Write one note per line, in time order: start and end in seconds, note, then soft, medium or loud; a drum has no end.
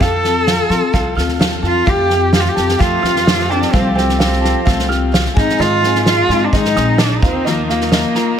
0.00 0.60 F2 medium
0.00 0.24 F3 medium
0.00 0.24 C4 medium
0.00 0.24 F4 medium
0.00 1.41 A4 loud
0.00 0.22 A4 medium
0.00 0.45 F5 medium
0.00 kick loud
0.00 snare soft
0.23 0.46 C4 soft
0.23 0.47 F4 soft
0.23 0.47 A4 medium
0.23 1.18 A5 medium
0.23 snare soft
0.47 0.70 F3 medium
0.47 0.71 C4 medium
0.47 0.71 F4 medium
0.47 0.69 A4 medium
0.47 0.92 F5 medium
0.47 snare loud
0.70 0.80 F3 loud
0.70 0.92 C4 medium
0.70 0.94 F4 medium
0.70 0.94 A4 medium
0.70 1.63 C6 medium
0.70 snare soft
0.93 1.13 C2 medium
0.93 1.17 F3 medium
0.93 1.17 C4 medium
0.93 1.16 F4 medium
0.93 1.14 A4 medium
0.93 1.39 F5 medium
0.93 kick medium
0.93 snare soft
1.15 1.38 D2 medium
1.15 1.38 C4 soft
1.15 1.39 F4 medium
1.15 1.39 A4 medium
1.15 1.87 F6 medium
1.15 snare soft
1.28 snare soft
1.39 1.60 D#2 medium
1.39 1.63 F3 medium
1.39 1.63 C4 medium
1.39 1.63 F4 medium
1.39 1.61 A4 medium
1.39 1.85 F5 medium
1.39 snare loud
1.62 1.84 F2 medium
1.62 1.85 C4 soft
1.62 1.86 F4 medium
1.62 1.86 A4 medium
1.62 1.87 A5 medium
1.62 snare soft
1.67 1.91 F4 medium
1.86 2.46 F2 loud
1.86 2.10 F3 medium
1.86 5.33 F3 medium
1.86 2.10 A3 medium
1.86 2.10 C4 medium
1.86 7.19 C4 medium
1.86 2.10 F4 medium
1.86 2.09 G4 medium
1.86 5.34 G4 medium
1.86 2.35 G4 loud
1.86 5.33 A4 medium
1.86 2.31 F5 medium
1.86 kick loud
1.86 snare soft
2.09 2.34 C4 soft
2.09 2.34 F4 medium
2.09 2.33 G4 medium
2.09 3.03 G5 medium
2.09 snare soft
2.33 2.57 A3 medium
2.33 2.58 C4 medium
2.33 2.57 F4 medium
2.33 2.42 G4 loud
2.33 2.55 G4 medium
2.33 2.77 F5 medium
2.33 snare loud
2.40 2.50 F4 medium
2.45 snare soft
2.49 2.82 G4 medium
2.55 2.77 F2 medium
2.55 2.78 C4 soft
2.55 2.79 F4 soft
2.55 2.79 G4 medium
2.55 3.49 A5 medium
2.55 snare soft
2.69 snare soft
2.79 3.00 F2 medium
2.79 3.03 F3 medium
2.79 3.03 A3 medium
2.79 3.03 C4 medium
2.79 3.02 F4 medium
2.79 3.52 F4 loud
2.79 3.01 G4 medium
2.79 3.24 F5 medium
2.79 kick medium
2.79 snare soft
3.02 3.63 F2 medium
3.02 3.25 C4 soft
3.02 3.27 F4 medium
3.02 3.26 G4 medium
3.02 3.96 F6 medium
3.02 snare soft
3.16 snare soft
3.26 3.50 A3 medium
3.26 3.50 C4 soft
3.26 3.50 F4 medium
3.26 3.49 G4 medium
3.26 3.71 F5 medium
3.26 snare loud
3.39 snare soft
3.49 3.73 C4 medium
3.49 3.74 D4 medium
3.49 3.72 F4 soft
3.49 3.73 G4 medium
3.49 3.94 G5 medium
3.49 snare soft
3.62 snare soft
3.72 4.52 C2 loud
3.72 3.96 F3 medium
3.72 3.96 A3 medium
3.72 3.94 C4 medium
3.72 3.97 C4 medium
3.72 3.96 F4 medium
3.72 3.94 G4 medium
3.72 4.17 F5 medium
3.72 kick loud
3.72 snare soft
3.95 4.17 C4 medium
3.95 4.19 C4 soft
3.95 4.20 F4 soft
3.95 4.19 G4 medium
3.95 4.89 G5 medium
3.95 snare soft
4.09 snare soft
4.18 4.43 A3 medium
4.18 4.85 C4 medium
4.18 4.43 C4 medium
4.18 4.43 F4 medium
4.18 4.41 G4 medium
4.18 4.63 F5 medium
4.18 snare loud
4.32 snare soft
4.41 4.65 F4 medium
4.41 4.66 G4 medium
4.41 5.35 A5 medium
4.41 snare soft
4.45 4.65 C4 soft
4.65 5.26 C2 loud
4.65 4.89 F3 medium
4.65 4.89 A3 medium
4.65 4.89 C4 medium
4.65 4.88 F4 medium
4.65 4.87 G4 medium
4.65 5.12 F5 medium
4.65 kick medium
4.65 snare soft
4.79 snare soft
4.88 5.11 C4 medium
4.88 5.13 F4 medium
4.88 5.12 G4 medium
4.88 5.36 F6 medium
4.88 snare soft
5.12 5.36 A3 medium
5.12 5.35 C4 medium
5.12 5.34 F4 medium
5.12 5.34 G4 medium
5.12 5.36 F5 medium
5.12 snare loud
5.25 snare soft
5.34 5.46 G#2 loud
5.34 7.20 G#3 medium
5.34 5.58 G#3 soft
5.34 5.58 C4 soft
5.34 5.59 D#4 medium
5.34 8.40 D#4 medium
5.34 5.62 D#4 loud
5.34 5.58 G#4 medium
5.34 5.82 G#5 medium
5.34 kick loud
5.34 snare soft
5.49 snare soft
5.58 5.82 G#2 medium
5.58 6.19 G#2 loud
5.58 5.82 D#3 medium
5.58 5.83 G#3 medium
5.58 5.82 C4 medium
5.58 5.81 D#4 medium
5.58 6.06 F4 loud
5.58 5.80 G#4 medium
5.58 6.06 D#5 loud
5.58 snare soft
5.81 6.04 G#3 soft
5.81 6.05 C4 soft
5.81 6.06 D#4 medium
5.81 6.05 G#4 medium
5.81 6.76 G#5 medium
5.81 snare soft
5.95 snare soft
6.05 6.29 G#3 medium
6.05 6.29 C4 medium
6.05 6.29 D#4 medium
6.05 6.46 F4 loud
6.05 6.28 G#4 medium
6.05 6.52 D#5 medium
6.05 snare loud
6.29 6.49 G#2 medium
6.29 6.52 G#3 soft
6.29 6.53 C4 medium
6.29 6.53 D#4 medium
6.29 6.52 G#4 medium
6.29 7.23 C6 medium
6.29 snare soft
6.44 6.54 D4 medium
6.52 6.76 G#2 medium
6.52 6.73 G#2 medium
6.52 6.76 D#3 medium
6.52 6.75 G#3 medium
6.52 6.74 C4 medium
6.52 7.00 D#4 loud
6.52 6.74 D#4 medium
6.52 6.73 G#4 medium
6.52 6.98 D#5 medium
6.52 kick medium
6.52 snare soft
6.64 snare soft
6.74 7.16 A#1 medium
6.74 6.97 G#3 soft
6.74 6.98 C4 soft
6.74 6.98 D#4 medium
6.74 6.98 G#4 medium
6.74 7.23 D#6 medium
6.74 snare soft
6.98 7.22 G#3 medium
6.98 7.22 C4 medium
6.98 7.22 D4 medium
6.98 7.23 D#4 medium
6.98 7.22 G#4 medium
6.98 7.23 D#5 medium
6.98 snare loud
7.21 8.02 D#2 loud
7.21 8.40 D#3 medium
7.21 7.48 C4 medium
7.21 8.40 F4 medium
7.21 7.47 F4 medium
7.21 8.40 A#4 medium
7.21 7.46 A#4 medium
7.21 7.68 F5 medium
7.21 kick loud
7.21 snare soft
7.25 7.46 A#3 soft
7.45 7.69 D#3 medium
7.45 7.70 F3 medium
7.45 7.68 A#3 medium
7.45 7.70 A#3 medium
7.45 7.70 F4 medium
7.45 7.69 A#4 medium
7.45 7.91 D#5 medium
7.45 snare soft
7.69 7.91 A#3 medium
7.69 7.91 A#3 soft
7.69 7.92 F4 medium
7.69 7.93 A#4 medium
7.69 8.40 F5 medium
7.69 snare soft
7.81 snare soft
7.92 8.15 F3 medium
7.92 8.40 A#3 medium
7.92 8.16 A#3 medium
7.92 8.15 F4 medium
7.92 8.14 A#4 medium
7.92 8.37 D#5 medium
7.92 snare loud
8.15 8.39 A#3 soft
8.15 8.40 F4 medium
8.15 8.39 A#4 medium
8.15 8.40 A#5 medium
8.15 snare soft